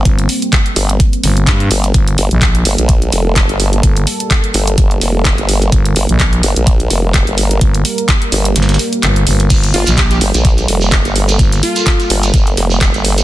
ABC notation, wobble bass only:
X:1
M:4/4
L:1/16
Q:"Swing 16ths" 1/4=127
K:Gm
V:1 name="Wobble bass" clef=bass
z6 G,,,2 z6 G,,,2 | z2 G,,, z3 G,,, B,,,3 F,,,3 G,,,3 | z6 G,,,2 G,,,2 F,,,3 G,,,3 | z2 G,,, z3 G,,, B,,,3 F,,,3 G,,,3 |
z6 G,,,2 z8 | z2 G,,, z3 G,,, B,,,3 F,,,3 G,,,3 | z6 G,,,2 G,,,2 F,,,3 G,,,3 |]